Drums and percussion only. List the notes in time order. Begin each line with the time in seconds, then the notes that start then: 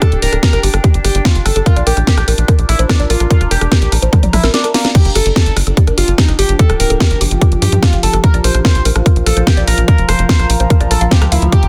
0.02 kick, cross-stick, closed hi-hat
0.12 closed hi-hat
0.22 open hi-hat
0.33 cross-stick, closed hi-hat
0.43 kick, snare, closed hi-hat
0.53 cross-stick, closed hi-hat
0.63 open hi-hat
0.74 cross-stick, closed hi-hat
0.84 kick, closed hi-hat
0.94 closed hi-hat
1.05 cross-stick, open hi-hat
1.15 closed hi-hat
1.25 kick, cross-stick, snare, closed hi-hat
1.35 closed hi-hat
1.46 cross-stick, open hi-hat
1.56 closed hi-hat
1.66 kick, closed hi-hat
1.76 cross-stick, closed hi-hat
1.87 open hi-hat
1.97 cross-stick, closed hi-hat
2.07 kick, snare, closed hi-hat
2.18 cross-stick, closed hi-hat
2.28 open hi-hat
2.38 closed hi-hat
2.48 kick, cross-stick, closed hi-hat
2.59 closed hi-hat
2.69 cross-stick, open hi-hat
2.79 closed hi-hat
2.89 kick, cross-stick, snare, closed hi-hat
3.00 closed hi-hat
3.10 open hi-hat
3.20 cross-stick, closed hi-hat
3.31 kick, closed hi-hat
3.41 cross-stick, closed hi-hat
3.51 open hi-hat
3.61 cross-stick, closed hi-hat
3.72 kick, snare, closed hi-hat
3.82 closed hi-hat
3.92 cross-stick, open hi-hat
4.02 closed hi-hat
4.13 kick, cross-stick, closed hi-hat, high tom
4.23 closed hi-hat, high tom
4.33 cross-stick, open hi-hat, high tom
4.44 snare, closed hi-hat
4.54 snare, closed hi-hat
4.64 cross-stick, closed hi-hat
4.74 snare, open hi-hat
4.85 cross-stick, snare, closed hi-hat
4.95 kick, closed hi-hat, crash
5.05 closed hi-hat
5.15 cross-stick, open hi-hat
5.26 closed hi-hat
5.36 kick, snare, closed hi-hat
5.46 closed hi-hat
5.57 cross-stick, open hi-hat
5.67 closed hi-hat
5.77 kick, closed hi-hat
5.87 cross-stick, closed hi-hat
5.98 open hi-hat
6.08 closed hi-hat
6.18 kick, snare, closed hi-hat
6.28 cross-stick, closed hi-hat
6.39 open hi-hat
6.49 closed hi-hat
6.59 kick, closed hi-hat
6.70 cross-stick, closed hi-hat
6.80 open hi-hat
6.90 closed hi-hat
7.00 kick, cross-stick, snare, closed hi-hat
7.11 closed hi-hat
7.21 open hi-hat
7.31 closed hi-hat
7.41 kick, cross-stick, closed hi-hat
7.52 closed hi-hat
7.62 open hi-hat
7.72 closed hi-hat
7.83 kick, cross-stick, snare, closed hi-hat
7.93 closed hi-hat
8.03 open hi-hat
8.13 cross-stick, closed hi-hat
8.24 kick, closed hi-hat
8.34 closed hi-hat
8.44 open hi-hat
8.55 cross-stick, closed hi-hat
8.65 kick, snare, closed hi-hat
8.75 closed hi-hat
8.85 open hi-hat
8.96 cross-stick, closed hi-hat
9.06 kick, closed hi-hat
9.16 closed hi-hat
9.26 cross-stick, open hi-hat
9.37 closed hi-hat
9.47 kick, snare, closed hi-hat
9.57 closed hi-hat
9.68 cross-stick, open hi-hat
9.78 closed hi-hat
9.88 kick, closed hi-hat
9.98 closed hi-hat
10.09 cross-stick, open hi-hat
10.19 closed hi-hat
10.29 kick, snare, closed hi-hat
10.39 cross-stick, closed hi-hat
10.50 open hi-hat
10.60 closed hi-hat
10.70 kick, closed hi-hat
10.81 cross-stick, closed hi-hat
10.91 open hi-hat
11.01 closed hi-hat
11.11 kick, snare, closed hi-hat
11.22 cross-stick, closed hi-hat
11.32 open hi-hat
11.42 closed hi-hat
11.52 kick, closed hi-hat
11.63 closed hi-hat